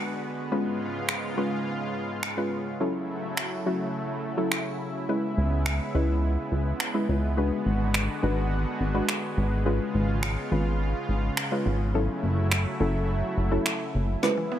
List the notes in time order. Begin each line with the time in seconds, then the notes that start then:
Already playing: D3 G#3 B3 D4 F#4 B4
0.51 G#2 C#3 G#3 C#4 F4 B4
1.09 finger snap
1.37 G#3 C#4 F4 B4
2.23 finger snap
2.37 G#3 C#4 F4 B4
2.80 F#3 A3 C#4 E4 A4
3.37 finger snap
3.66 F#3 C#4 E4 F#4
4.37 F#3 C#4 E4 A4
4.52 finger snap
5.09 G#3 B3 C#4 E4 B4
5.37 C#2
5.66 finger snap
5.94 C#2 G#3 C#4 E4 B4
6.52 C#2
6.80 finger snap
6.94 G#3 C#4 E4 B4
7.09 C#2
7.37 D3 G#3 D4 F#4 B4
7.66 G#1
7.94 finger snap
8.23 G#1 G#3 D4 F#4 B4
8.80 G#1
8.94 G#3 D4 F#4 B4
9.09 finger snap
9.37 G#1
9.66 C#3 G#3 C#4 F4 B4
9.94 G#1
10.23 finger snap
10.51 G#1 G#3 C#4 F4 B4
11.09 G#1
11.37 finger snap
11.51 G#3 C#4 F4 B4
11.66 G#1
11.94 F#3 A3 C#4 E4 A4
12.23 F#1
12.52 finger snap
12.80 F#1 F#3 C#4 E4 A4
13.37 F#1
13.51 F#3 C#4 E4 A4
13.66 finger snap
13.94 F#1
14.23 C#3 G#3 B3 C#4 E4 B4, snare
14.37 E3
14.52 B3